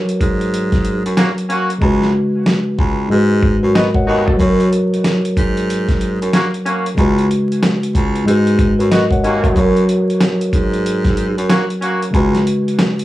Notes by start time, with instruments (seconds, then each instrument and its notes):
Already playing: tine electric piano F#3 F#4 A#4 B4 C#5
0.09 closed hi-hat
0.21 baritone saxophone G#2, kick, closed hi-hat
0.41 closed hi-hat
0.54 closed hi-hat
0.72 kick, snare, closed hi-hat
0.85 closed hi-hat
1.05 baritone saxophone F#2, closed hi-hat
1.17 horn section A#3 C#4 F#4, snare, closed hi-hat
1.38 closed hi-hat
1.49 horn section A#3 C#4 F#4, closed hi-hat
1.70 closed hi-hat
1.78 baritone saxophone C#2, tine electric piano C#3 G#3, kick
1.83 tine electric piano F#4 B4
2.02 snare
2.46 snare
2.79 baritone saxophone C#2, kick
3.08 tine electric piano G#2 G#3, baritone saxophone G#2
3.12 tine electric piano F#4 B4
3.43 kick
3.63 baritone saxophone F#2, tine electric piano F#4 B4
3.75 horn section B3 D#4 F#4, tine electric piano A#4 D#5, snare
3.94 tine electric piano C#5 F#5, kick
4.07 baritone saxophone D#2, horn section B3 D#4 F#4, tine electric piano A#4 D#5
4.27 tine electric piano F#4 B4, kick
4.36 baritone saxophone F#2, tine electric piano F#3 F#4, kick
4.40 tine electric piano A#4 C#5, closed hi-hat
4.60 closed hi-hat
4.73 closed hi-hat
4.94 closed hi-hat
5.04 snare, closed hi-hat
5.25 closed hi-hat
5.37 baritone saxophone G#2, kick, closed hi-hat
5.57 closed hi-hat
5.70 closed hi-hat
5.89 kick, snare, closed hi-hat
6.01 closed hi-hat
6.21 baritone saxophone F#2, closed hi-hat
6.33 horn section A#3 C#4 F#4, snare, closed hi-hat
6.54 closed hi-hat
6.65 horn section A#3 C#4 F#4, closed hi-hat
6.86 closed hi-hat
6.94 baritone saxophone C#2, tine electric piano C#3 G#3, kick, closed hi-hat
6.99 tine electric piano F#4 B4
7.18 closed hi-hat
7.31 closed hi-hat
7.52 closed hi-hat
7.63 snare, closed hi-hat
7.83 closed hi-hat
7.95 baritone saxophone C#2, kick, closed hi-hat
8.16 closed hi-hat
8.24 tine electric piano G#2 G#3, baritone saxophone G#2
8.28 tine electric piano F#4 B4, closed hi-hat
8.47 closed hi-hat
8.59 kick, closed hi-hat
8.79 baritone saxophone F#2, tine electric piano F#4 B4, closed hi-hat
8.91 horn section B3 D#4 F#4, tine electric piano A#4 D#5, snare, closed hi-hat
9.11 tine electric piano C#5 F#5, kick, closed hi-hat
9.24 baritone saxophone D#2, horn section A#3 C#4 F#4, tine electric piano A#4 D#5, closed hi-hat
9.43 tine electric piano F#4 B4, kick, closed hi-hat
9.53 baritone saxophone F#2, tine electric piano F#3 F#4, kick
9.57 tine electric piano A#4 C#5, closed hi-hat
9.77 closed hi-hat
9.89 closed hi-hat
10.10 closed hi-hat
10.21 snare, closed hi-hat
10.41 closed hi-hat
10.53 baritone saxophone G#2, kick, closed hi-hat
10.74 closed hi-hat
10.86 closed hi-hat
11.05 kick, snare, closed hi-hat
11.17 closed hi-hat
11.38 baritone saxophone F#2, closed hi-hat
11.50 horn section A#3 C#4 F#4, snare, closed hi-hat
11.70 closed hi-hat
11.82 horn section A#3 C#4 F#4, closed hi-hat
12.03 closed hi-hat
12.11 baritone saxophone C#2, tine electric piano C#3 G#3, kick, closed hi-hat
12.15 tine electric piano F#4 B4
12.34 snare, closed hi-hat
12.47 closed hi-hat
12.68 closed hi-hat
12.79 snare, closed hi-hat
12.99 closed hi-hat